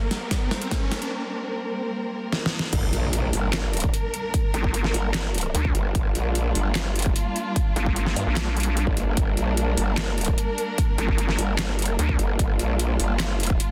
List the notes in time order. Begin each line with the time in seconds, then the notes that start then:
Already playing: G3 A#3 C4 A#4, riser
0.11 snare, open hi-hat
0.31 kick, snare, closed hi-hat
0.51 snare
0.62 closed hi-hat
0.71 kick, snare, closed hi-hat
0.92 snare, closed hi-hat
1.02 closed hi-hat
2.33 snare
2.46 snare
2.59 snare
2.73 G1 G3 A#3 D4 A#4, kick, closed hi-hat, crash, impact
2.93 A#1, closed hi-hat
3.13 closed hi-hat
3.33 G1, open hi-hat
3.53 snare, clap, closed hi-hat
3.73 closed hi-hat
3.77 closed hi-hat
3.80 kick, closed hi-hat
3.94 closed hi-hat
4.14 closed hi-hat
4.34 kick, closed hi-hat
4.54 G1, closed hi-hat
4.64 kick
4.74 closed hi-hat
4.84 snare
4.94 G1, open hi-hat
5.14 snare, clap, closed hi-hat
5.35 closed hi-hat
5.38 closed hi-hat
5.41 closed hi-hat
5.55 D2, closed hi-hat
5.65 kick
5.75 G1, closed hi-hat
5.95 G1 F4, kick, closed hi-hat
6.15 A#1, closed hi-hat
6.35 closed hi-hat
6.55 G1, open hi-hat
6.75 snare, clap, closed hi-hat
6.96 F#1, closed hi-hat
6.99 closed hi-hat
7.02 kick, closed hi-hat
7.16 closed hi-hat
7.36 closed hi-hat
7.56 kick, closed hi-hat
7.76 G1, closed hi-hat
7.86 kick
7.96 closed hi-hat
8.06 snare
8.16 G2, open hi-hat
8.27 A#1
8.37 snare, clap, closed hi-hat
8.57 closed hi-hat
8.60 closed hi-hat
8.63 closed hi-hat
8.77 closed hi-hat
8.87 A1, kick
8.97 closed hi-hat
9.07 G1
9.17 G1 A#4, kick, closed hi-hat
9.37 A#1, closed hi-hat
9.57 closed hi-hat
9.77 G1, open hi-hat
9.98 snare, clap, closed hi-hat
10.18 closed hi-hat
10.21 closed hi-hat
10.25 kick, closed hi-hat
10.38 closed hi-hat
10.58 closed hi-hat
10.78 kick, closed hi-hat
10.98 G1, closed hi-hat
11.09 kick
11.18 closed hi-hat
11.29 snare
11.39 G1, open hi-hat
11.59 snare, clap, closed hi-hat
11.79 F#1, closed hi-hat
11.82 closed hi-hat
11.85 closed hi-hat
11.99 D2, closed hi-hat
12.09 kick
12.19 G1, closed hi-hat
12.39 G1 F4, kick, closed hi-hat
12.59 A#1, closed hi-hat
12.79 closed hi-hat
13.00 G1, open hi-hat
13.20 snare, clap, closed hi-hat
13.40 closed hi-hat
13.43 closed hi-hat
13.47 kick, closed hi-hat
13.60 closed hi-hat